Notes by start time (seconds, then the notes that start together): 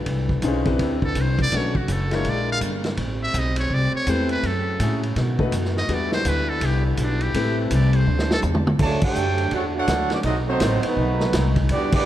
Already playing: D3 B4
0.06 C2 C4 E4, kick, ride
0.29 kick
0.42 B1 C#4 D#4 F4 G#4 C5, kick, hi-hat pedal, ride
0.65 C4 D4 E4 G4 B4, kick, ride
0.79 D2, kick, ride
1.02 A4, kick
1.15 C2, kick, hi-hat pedal, ride
1.21 C5
1.39 D5, kick, ride
1.51 B1 A3 C#4 D4 F#4 B4, kick, snare, ride
1.57 C#5
1.75 F#4, kick
1.88 F#1 A4, kick, hi-hat pedal, ride
2.11 G#3 D4 E4 F4 A#4 C#5, snare, ride
2.25 A#1 D3 G#3 A#3, kick, ride
2.29 D5
2.52 F5
2.61 G1, kick, hi-hat pedal, ride
2.84 snare, ride
2.97 A1 G3 A3 C4, kick, ride
3.23 E5
3.33 B1, kick, hi-hat pedal, ride
3.39 D#5
3.56 C#5, ride
3.70 C2 D5, kick
3.93 C#5, muted upright bass stroke
4.07 E2 A3 C4 E4 G4 B4 C5, kick, hi-hat pedal, ride
4.29 B4, ride
4.43 F#2 C#3 F#3 A4, kick, ride
4.80 A2 A3 C#4 E4 F#4 G#4, kick, hi-hat pedal, ride
5.03 ride
5.16 B2 D#3 A3 B3 F#4, kick, snare, ride
5.39 A3 B3 D#4 F#4 B4, kick
5.52 F#2, kick, hi-hat pedal, ride
5.65 snare
5.77 D#5, snare
5.88 E2 D3 G3 D4 E4 F#4 B4, kick, ride
5.94 D5
6.12 C5, snare
6.25 D2 B4, kick, hi-hat pedal, ride
6.49 A4
6.61 C2, kick, ride
6.66 G4
6.86 B3
6.97 B1, kick, hi-hat pedal, ride
7.02 D4
7.21 G4, ride
7.34 A1 C3 A3 C4 E4 G4 B4, kick, ride
7.71 C2 D5, kick, hi-hat pedal, ride
7.93 C5, ride
8.06 D2 C3 F#3 D4
8.19 snare
8.31 A4, snare
8.42 E2, floor tom, hi-hat pedal
8.55 mid tom
8.67 mid tom
8.79 D2 C#3 D3 F#3 A3 D4 F#4 C#5 D5 A5, kick, crash
9.01 A3 D4 G4 A4 C#5 G5, kick, crash
9.15 F#2, hi-hat pedal
9.38 ride
9.51 E2 A3 C#4 D4 F#4 A4 C#5 F#5, kick, ride
9.74 A3 D4 F#4 A4 C#5 F#5
9.88 D2, kick, snare, hi-hat pedal, ride
10.10 F#3 A3 C#4 D4 F#4 D5, snare, ride
10.23 B1 B2 C3 F#3 A3 C4 D#4 F#4 A4 D#5, kick, ride
10.48 F#3 A3 C4 D#4 F#4 C5
10.60 A1, kick, snare, hi-hat pedal, ride
10.83 D#3 F#3 A3 B3 D#4 F#4 B4, muted upright bass stroke, ride
10.97 B1, kick
11.20 snare
11.33 C2, kick, snare, hi-hat pedal, ride
11.56 kick, ride
11.69 E2 G3 B3 D4 E4 F#4 G4 D5, kick, ride
11.92 G3 B3 D4 F#4 G4 D5, kick, crash